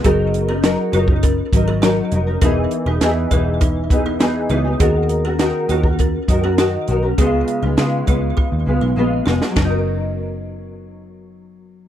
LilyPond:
<<
  \new Staff \with { instrumentName = "Kalimba" } { \time 4/4 \key fis \major \tempo 4 = 101 <cis' gis'>8 r16 <cis' ais'>16 r8 <eis' cis''>8 <cis' ais'>16 r8 <cis' ais'>16 <fis' cis''>8. r16 | <dis' ais'>8 r16 <dis' b'>16 r8 <e' cis''>8 <dis' b'>16 r8 <dis' b'>16 r8 <e' cis''>16 r16 | <cis' gis'>8 r16 <cis' ais'>16 r8 <eis' cis''>8 <cis' ais'>16 r8 <cis' ais'>16 <fis' cis''>8. r16 | <b gis'>8 r16 <dis' b'>16 r8 <eis' cis''>8 <eis' b'>16 r8 <dis' b'>16 r8 <eis' cis''>16 r16 |
fis'2. r4 | }
  \new Staff \with { instrumentName = "Nylon-string guitar" } { \time 4/4 \key fis \major <fis cis' dis' ais'>8. <cis' dis' ais'>16 <fis cis' dis' ais'>8 <fis cis' dis' ais'>16 <cis' dis' ais'>8. <fis cis' dis' ais'>8 <fis cis' dis' ais'>8 <fis cis' dis' ais'>16 <cis' dis' ais'>16 | <e b dis' gis'>8. <b dis' gis'>16 <e b dis' gis'>8 <e b dis' gis'>4 <e b dis' gis'>8 <e b dis' gis'>8 <e b dis' gis'>16 <b dis' gis'>16 | <dis cis' fis' ais'>8. <cis' fis' ais'>16 <dis cis' fis' ais'>8 <dis cis' fis' ais'>16 <cis' fis' ais'>8. <dis cis' fis' ais'>16 <cis' fis' ais'>16 <dis cis' fis' ais'>8 <dis cis' fis' ais'>16 <cis' fis' ais'>16 | <cis gis b eis'>8. <gis b eis'>16 <cis gis b eis'>8 <cis gis b eis'>4 <cis gis b eis'>8 <cis gis b eis'>8 <cis gis b eis'>16 <gis b eis'>16 |
<fis cis' dis' ais'>1 | }
  \new Staff \with { instrumentName = "Picked electric bass" } { \clef bass \time 4/4 \key fis \major fis,,4~ fis,,16 r16 fis,,4 gis,,4 eis,,8 | e,,8 r16 e,,16 e,8 e,,2 cis,8 | dis,4~ dis,16 r16 dis,4 fis,4 b,,8 | cis,8 r16 cis,16 cis8 cis,8 r16 dis,16 cis,16 b,,16 ais,,8 eis,,16 r16 |
fis,,1 | }
  \new DrumStaff \with { instrumentName = "Drums" } \drummode { \time 4/4 <hh bd>8 hh8 <hh sn>8 hh16 bd16 <hh bd>8 <hh bd>8 <hh sn>8 hh8 | <hh bd>8 hh8 <hh sn>8 <hh bd>8 <hh bd>8 <hh bd>8 <hh sn>8 hh8 | <hh bd>8 hh8 <hh sn>8 hh16 bd16 <hh bd>8 <hh bd>8 <hh sn>8 hh8 | <hh bd>8 hh8 <hh sn>8 <hh bd>8 bd4 r8 sn16 sn16 |
<bd rb sn>4 r4 r4 r4 | }
>>